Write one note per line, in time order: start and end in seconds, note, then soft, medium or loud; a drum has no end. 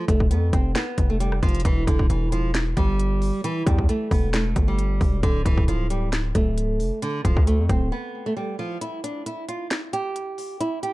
0.08 0.32 F1 loud
0.08 0.26 A3 medium
0.08 kick loud
0.08 closed hi-hat medium
0.20 kick loud
0.31 0.52 F2 loud
0.31 0.48 B3 medium
0.31 closed hi-hat medium
0.53 0.75 F1 loud
0.53 0.71 C4 medium
0.53 kick loud
0.53 cross-stick medium
0.53 closed hi-hat medium
0.75 1.08 B3 medium
0.75 snare loud
0.75 clap medium
0.75 closed hi-hat medium
0.98 1.41 F1 loud
0.98 kick medium
0.98 closed hi-hat medium
1.10 1.18 A3 medium
1.20 1.38 G3 medium
1.20 closed hi-hat medium
1.32 cross-stick medium
1.43 1.64 F1 loud
1.43 1.60 F3 medium
1.43 kick medium
1.43 closed hi-hat soft
1.49 closed hi-hat soft
1.55 closed hi-hat medium
1.60 closed hi-hat medium
1.65 1.86 E1 loud
1.65 1.83 E3 medium
1.65 kick loud
1.65 closed hi-hat medium
1.87 2.09 E1 loud
1.87 2.05 D3 medium
1.87 kick loud
1.87 closed hi-hat medium
1.99 kick loud
2.10 2.74 E1 loud
2.10 2.28 E3 medium
2.10 closed hi-hat medium
2.32 2.50 F3 medium
2.32 closed hi-hat medium
2.55 snare loud
2.55 clap medium
2.55 closed hi-hat medium
2.77 3.31 G1 loud
2.77 3.40 G3 loud
2.77 kick medium
2.77 closed hi-hat medium
2.99 closed hi-hat medium
3.22 open hi-hat medium
3.44 3.62 E3 medium
3.44 closed hi-hat medium
3.66 3.88 E2 loud
3.66 3.84 G3 medium
3.66 kick loud
3.66 closed hi-hat medium
3.78 kick loud
3.89 4.07 A3 medium
3.89 closed hi-hat medium
4.11 4.54 E1 loud
4.11 4.29 B3 medium
4.11 kick loud
4.11 open hi-hat medium
4.34 4.66 A3 medium
4.34 snare loud
4.34 clap medium
4.34 closed hi-hat medium
4.56 4.99 G1 loud
4.56 kick medium
4.56 closed hi-hat medium
4.68 5.20 G3 medium
4.79 closed hi-hat medium
5.01 5.22 E1 loud
5.01 kick medium
5.01 open hi-hat medium
5.23 5.45 D1 loud
5.23 5.41 D3 loud
5.23 kick loud
5.23 closed hi-hat medium
5.46 5.57 D1 loud
5.46 5.63 E3 medium
5.46 kick loud
5.46 closed hi-hat medium
5.58 5.68 D1 loud
5.58 kick loud
5.68 6.32 D1 loud
5.68 5.86 F3 medium
5.68 closed hi-hat medium
5.90 6.08 G3 medium
5.90 closed hi-hat medium
6.13 snare loud
6.13 clap medium
6.13 closed hi-hat medium
6.35 6.81 D1 loud
6.35 6.98 A3 medium
6.35 kick medium
6.35 closed hi-hat medium
6.58 closed hi-hat medium
6.80 6.91 F1 medium
6.80 open hi-hat medium
7.02 7.20 D3 loud
7.02 closed hi-hat medium
7.25 7.36 D1 loud
7.25 7.43 F3 medium
7.25 kick loud
7.25 closed hi-hat medium
7.37 7.60 D2 loud
7.37 kick loud
7.47 7.65 A3 medium
7.47 closed hi-hat medium
7.59 7.69 F2 loud
7.69 7.91 D1 loud
7.69 7.87 C4 medium
7.69 kick loud
7.69 cross-stick medium
7.69 closed hi-hat medium
7.92 8.24 B3 medium
8.26 8.35 A3 medium
8.37 8.54 G3 medium
8.59 8.77 F3 medium
8.81 8.99 E4 medium
8.81 closed hi-hat medium
9.04 9.22 D4 medium
9.04 closed hi-hat medium
9.26 9.44 E4 medium
9.26 closed hi-hat medium
9.49 9.66 F4 medium
9.49 closed hi-hat medium
9.71 snare loud
9.71 clap medium
9.71 closed hi-hat medium
9.93 10.56 G4 medium
9.93 closed hi-hat medium
10.16 closed hi-hat medium
10.38 open hi-hat medium
10.61 10.78 E4 medium
10.61 closed hi-hat medium
10.83 10.93 G4 medium
10.83 closed hi-hat medium